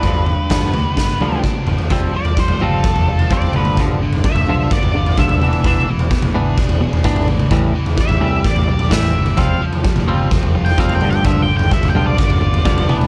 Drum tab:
SD |----o---o-------|----------------|----------------|----------------|
T1 |----------oo----|----------------|----------------|----------------|
T2 |------o-----o---|-----o------o-oo|-----o------o-oo|-----o------o-oo|
FT |ooo-ooo-------oo|o--o-o---o-o-o--|o--o-o---o-o-o--|o--o-o---o-o-o--|
BD |o---o---o---o---|o---o---o---o---|o---o---o---o---|o---o---o---o---|

SD |------------o---|----------------|----------------|
T1 |----------------|----------------|----------------|
T2 |------------o--o|-----o------o-oo|-----o------o-oo|
FT |o--o-o---o-o-o--|o--o-o---o-o-o--|o--o-o---o-o-o--|
BD |o---o---o---o---|o---o---o---o---|o---o---o---o---|